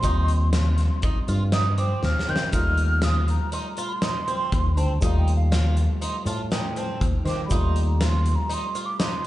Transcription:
0.00 0.88 D#2 loud
0.00 2.48 G3 medium
0.00 2.49 C4 medium
0.00 0.75 C6 loud
0.00 kick loud
0.00 closed hi-hat medium
0.00 shaker medium
0.04 0.32 D#4 medium
0.04 2.50 F4 medium
0.28 closed hi-hat medium
0.28 shaker soft
0.53 0.82 F4 medium
0.53 snare loud
0.53 closed hi-hat medium
0.53 shaker soft
0.78 snare soft
0.78 closed hi-hat medium
1.02 1.18 D#4 medium
1.02 kick loud
1.02 closed hi-hat medium
1.28 1.92 G2 medium
1.28 1.42 F4 medium
1.28 closed hi-hat medium
1.28 shaker soft
1.52 1.67 D#4 medium
1.52 1.77 D#6 loud
1.52 snare loud
1.52 closed hi-hat medium
1.78 2.06 C4 medium
1.78 2.02 D6 medium
1.78 closed hi-hat medium
1.78 shaker soft
2.03 2.14 D#2 medium
2.03 2.31 F6 loud
2.03 snare medium
2.03 shaker soft
2.19 snare medium
2.28 2.49 D#3 medium
2.28 2.42 C4 medium
2.28 2.53 G6 medium
2.36 snare loud
2.52 3.37 D#2 medium
2.52 4.98 G3 medium
2.52 4.98 A3 medium
2.52 2.81 D#4 medium
2.52 4.99 F4 medium
2.52 3.06 F6 loud
2.52 kick loud
2.52 closed hi-hat medium
2.52 shaker medium
2.77 closed hi-hat medium
3.02 3.31 F4 medium
3.02 3.29 D#6 loud
3.02 snare loud
3.02 closed hi-hat medium
3.02 shaker soft
3.28 3.52 A#5 medium
3.28 closed hi-hat medium
3.52 3.67 D#4 medium
3.52 3.60 C6 medium
3.52 closed hi-hat medium
3.70 3.85 A#5 medium
3.77 3.92 F4 medium
3.77 closed hi-hat medium
3.77 shaker soft
3.87 4.79 C6 loud
4.02 4.17 D#4 medium
4.02 snare loud
4.02 closed hi-hat medium
4.02 shaker soft
4.28 4.55 C4 medium
4.28 closed hi-hat medium
4.52 4.76 D#2 loud
4.52 kick loud
4.52 closed hi-hat medium
4.52 shaker soft
4.76 4.98 D2 loud
4.76 4.91 C4 medium
4.76 5.02 A5 medium
4.76 closed hi-hat medium
4.76 shaker soft
5.01 5.86 D#2 medium
5.01 7.46 G3 medium
5.01 7.47 A3 medium
5.01 5.30 D#4 medium
5.01 7.48 F4 medium
5.01 5.20 F5 medium
5.01 kick loud
5.01 closed hi-hat medium
5.01 shaker medium
5.19 5.35 G5 medium
5.28 closed hi-hat medium
5.36 5.82 F5 medium
5.52 5.79 F4 medium
5.52 snare loud
5.52 closed hi-hat medium
5.52 shaker soft
5.77 closed hi-hat medium
6.01 6.15 D#4 medium
6.01 6.25 C6 medium
6.01 closed hi-hat medium
6.25 6.89 A2 medium
6.25 6.40 F4 medium
6.25 6.50 A5 medium
6.25 closed hi-hat medium
6.25 shaker soft
6.51 6.66 D#4 medium
6.51 6.80 G5 medium
6.51 snare loud
6.51 closed hi-hat medium
6.51 shaker soft
6.76 7.04 C4 medium
6.76 7.02 A5 medium
6.76 closed hi-hat medium
7.01 7.12 D#2 medium
7.01 kick loud
7.01 closed hi-hat medium
7.01 shaker soft
7.25 7.46 D#3 medium
7.25 7.39 C4 medium
7.25 7.44 D6 medium
7.25 snare soft
7.25 closed hi-hat medium
7.25 shaker soft
7.45 9.27 G3 medium
7.45 7.57 B5 medium
7.50 8.35 D#2 loud
7.50 9.27 A3 medium
7.50 7.79 D#4 medium
7.50 9.27 F4 medium
7.50 kick loud
7.50 closed hi-hat medium
7.50 shaker medium
7.55 7.86 C6 medium
7.76 closed hi-hat medium
7.86 8.05 A#5 medium
8.01 8.29 F4 medium
8.01 8.37 C6 medium
8.01 snare loud
8.01 closed hi-hat medium
8.01 shaker soft
8.26 closed hi-hat medium
8.36 8.55 A#5 medium
8.49 8.63 D#4 medium
8.49 closed hi-hat medium
8.54 8.87 C6 medium
8.75 8.89 F4 medium
8.75 closed hi-hat medium
8.75 shaker soft
8.86 9.00 D6 medium
9.00 9.13 D#4 medium
9.00 9.27 C6 loud
9.00 snare loud
9.00 closed hi-hat medium
9.00 shaker soft

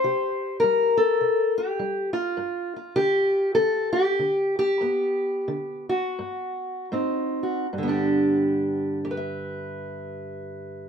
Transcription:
0.00 0.58 C3 medium
0.00 0.59 C5 medium
0.04 0.97 G4 soft
0.60 1.56 A#4 loud
0.64 1.17 G3 medium
0.97 1.57 A4 medium
1.21 1.75 C3 medium
1.58 2.13 G4 medium
1.79 2.33 G3 medium
2.13 2.73 F4 medium
2.37 2.91 G2 medium
2.76 4.77 F4 soft
2.96 3.51 D3 medium
2.96 3.54 G4 loud
3.55 4.13 D3 medium
3.55 3.92 A4 loud
3.93 4.55 G4 loud
4.19 4.76 D3 medium
4.59 5.89 G4 medium
4.81 5.41 G2 medium
4.81 6.86 B3 soft
5.48 6.10 D3 medium
5.89 7.37 F#4 medium
6.19 6.84 G2 medium
6.92 7.63 G#2 medium
6.92 7.66 C4 soft
6.92 7.66 D#4 soft
7.43 7.66 F#4 soft
7.73 10.89 G2 medium
7.78 10.89 D3 medium
7.83 9.04 B3 medium
7.88 9.10 D4 medium
7.88 8.98 G4 medium
9.05 10.89 G4 medium
9.11 10.89 B4 medium
9.17 10.89 E5 medium

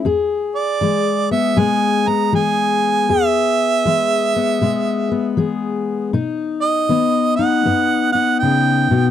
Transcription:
0.05 0.75 E2 medium
0.05 2.32 G#4 medium
0.56 1.27 D5 medium
0.81 1.51 E3 medium
0.81 1.57 G#3 medium
1.31 2.07 B3 medium
1.31 1.60 E5 medium
1.56 2.27 B2 medium
1.56 3.06 G#3 medium
1.56 2.09 G#5 loud
2.07 4.36 B3 medium
2.07 2.34 A#5 loud
2.32 3.03 E3 medium
2.32 3.06 G#4 medium
2.32 3.12 G#5 loud
3.09 3.80 E2 medium
3.09 5.36 G#4 medium
3.09 5.38 E5 loud
3.85 4.56 E3 medium
3.85 4.61 G#3 medium
4.36 5.10 B3 medium
4.61 5.32 B2 medium
4.61 6.11 G#3 medium
5.12 6.13 B3 medium
5.37 6.08 E3 medium
5.37 6.10 G#4 medium
6.13 6.84 B2 medium
6.13 7.38 D#4 medium
6.61 7.34 D#5 medium
6.89 7.60 D#3 medium
6.89 7.65 B3 medium
7.36 8.14 D#4 medium
7.36 8.09 F#5 medium
7.65 8.36 F#2 medium
7.65 9.11 B3 medium
8.12 9.11 D#4 medium
8.12 8.38 F#5 loud
8.39 8.91 C#3 medium
8.39 9.11 G5 loud
8.91 9.11 B2 medium

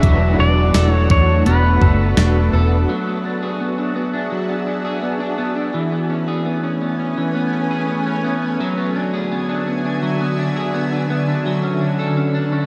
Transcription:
0.00 0.35 E1 loud
0.00 1.49 E3 medium
0.00 2.89 F#3 medium
0.00 2.86 A3 medium
0.00 1.44 A3 medium
0.00 2.86 B3 medium
0.00 0.38 D4 medium
0.00 2.86 F#4 medium
0.00 0.10 G#4 medium
0.00 2.86 A4 medium
0.00 0.40 E5 loud
0.00 kick loud
0.00 closed hi-hat medium
0.04 1.46 D4 medium
0.04 1.47 F#4 medium
0.04 1.48 B4 medium
0.39 0.70 E1 loud
0.39 1.10 D4 medium
0.39 0.91 D5 loud
0.74 1.06 E1 medium
0.74 1.81 A4 medium
0.74 snare loud
0.74 closed hi-hat medium
0.74 tambourine medium
0.91 1.11 C#5 loud
1.10 1.42 E2 loud
1.10 2.17 D4 medium
1.10 1.47 C#5 medium
1.10 kick loud
1.45 1.77 E1 loud
1.45 2.52 A3 medium
1.45 3.07 B3 medium
1.45 2.55 D4 medium
1.45 2.53 F#4 medium
1.45 2.49 B4 medium
1.45 2.52 B4 medium
1.45 closed hi-hat medium
1.82 2.13 F#1 medium
1.82 2.52 A4 medium
1.82 kick medium
2.17 2.49 E1 loud
2.17 3.24 D4 medium
2.17 snare loud
2.17 closed hi-hat medium
2.17 tambourine medium
2.52 2.85 E1 medium
2.52 2.90 D4 soft
2.52 2.89 F#4 soft
2.52 2.96 A4 medium
2.52 2.88 B4 medium
2.89 4.30 F#3 medium
2.89 5.71 D4 medium
2.89 5.72 F#4 medium
2.89 5.72 G#4 medium
2.89 5.72 E5 medium
3.07 3.60 B3 soft
3.25 3.77 D4 soft
3.42 4.84 G#4 medium
3.60 3.95 B3 medium
3.78 4.12 D4 soft
3.96 4.49 B3 soft
4.14 4.66 D4 medium
4.32 5.73 F#3 medium
4.49 5.02 B3 soft
4.67 5.19 D4 soft
4.85 6.27 G#4 medium
5.02 5.38 B3 medium
5.20 5.55 D4 medium
5.38 5.92 B3 medium
5.56 5.81 D4 soft
5.74 7.17 E3 medium
5.74 8.57 A3 medium
5.74 8.57 C#4 medium
5.74 8.57 B4 medium
5.74 8.57 G#5 medium
5.92 6.45 B3 medium
6.10 6.62 C#4 soft
6.28 7.70 G#4 medium
6.46 6.81 B3 medium
6.64 6.98 C#4 soft
6.81 7.35 B3 soft
6.99 7.52 C#4 medium
7.17 8.60 E3 medium
7.35 7.88 B3 medium
7.53 8.05 C#4 soft
7.71 8.99 G#4 medium
7.89 8.24 B3 medium
8.06 8.41 C#4 medium
8.24 8.77 B3 medium
8.43 8.67 C#4 soft
8.59 12.66 D3 medium
8.59 10.02 F#3 medium
8.59 11.43 F#4 medium
8.59 11.43 E5 medium
8.59 11.43 G#5 medium
8.78 9.31 B3 soft
8.96 9.48 D4 soft
9.14 10.55 G#4 medium
9.32 9.67 B3 medium
9.49 9.85 D4 medium
9.67 10.20 B3 soft
9.85 10.38 D4 medium
10.03 11.45 F#3 medium
10.21 10.74 B3 medium
10.38 10.92 D4 medium
10.56 11.53 G#4 medium
10.74 11.10 B3 medium
10.92 11.27 D4 soft
11.10 11.63 B3 soft
11.28 11.67 D4 soft
11.46 12.66 F#3 medium
11.46 12.66 B4 medium
11.46 12.66 C#5 medium
11.46 12.66 A5 medium
11.64 12.16 C#4 medium
11.81 12.34 D4 soft
11.99 12.66 A4 medium
12.17 12.51 C#4 soft
12.34 12.66 D4 medium
12.52 12.66 C#4 soft

